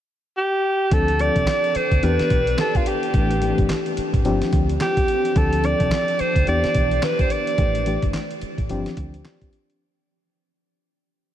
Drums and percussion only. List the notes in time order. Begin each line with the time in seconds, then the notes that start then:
0.91 kick, closed hi-hat
1.08 closed hi-hat
1.19 closed hi-hat
1.36 kick, closed hi-hat
1.47 snare, clap, closed hi-hat
1.64 closed hi-hat
1.75 closed hi-hat
1.91 kick, closed hi-hat
2.03 closed hi-hat
2.19 snare, closed hi-hat
2.30 kick, closed hi-hat
2.47 closed hi-hat
2.58 snare, clap, closed hi-hat
2.75 kick, closed hi-hat
2.86 closed hi-hat
3.03 closed hi-hat
3.14 kick, closed hi-hat
3.31 closed hi-hat
3.42 closed hi-hat
3.58 kick, closed hi-hat
3.69 snare, clap, closed hi-hat
3.86 closed hi-hat
3.97 closed hi-hat
4.13 kick, closed hi-hat
4.25 closed hi-hat
4.42 snare, closed hi-hat
4.53 kick, closed hi-hat
4.69 closed hi-hat
4.80 snare, clap, closed hi-hat
4.97 kick, closed hi-hat
5.08 closed hi-hat
5.25 closed hi-hat
5.36 kick, closed hi-hat
5.53 closed hi-hat
5.64 closed hi-hat
5.80 kick, closed hi-hat
5.91 snare, clap, closed hi-hat
6.08 closed hi-hat
6.19 closed hi-hat
6.36 kick, closed hi-hat
6.47 closed hi-hat
6.64 snare, closed hi-hat
6.75 kick, closed hi-hat
6.91 closed hi-hat
7.03 snare, clap, closed hi-hat
7.19 kick, closed hi-hat
7.30 closed hi-hat
7.47 closed hi-hat
7.58 kick, closed hi-hat
7.75 closed hi-hat
7.86 closed hi-hat
8.02 kick, closed hi-hat
8.14 snare, clap, closed hi-hat
8.31 closed hi-hat
8.41 closed hi-hat
8.58 kick, closed hi-hat
8.69 closed hi-hat
8.86 snare, closed hi-hat
8.97 kick, closed hi-hat
9.14 closed hi-hat
9.25 snare, clap, closed hi-hat
9.41 kick, closed hi-hat
9.53 closed hi-hat
9.70 closed hi-hat